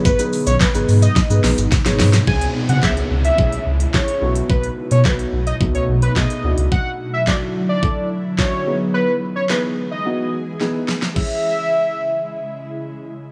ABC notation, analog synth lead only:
X:1
M:4/4
L:1/16
Q:1/4=108
K:C#m
V:1 name="Analog synth lead"
B2 z c B z2 d3 z6 | g2 z f e z2 e3 z2 c3 z | B2 z c B z2 d z c z B d3 z | f2 z e =d z2 d3 z2 c3 z |
B2 z c B z2 d3 z6 | e12 z4 |]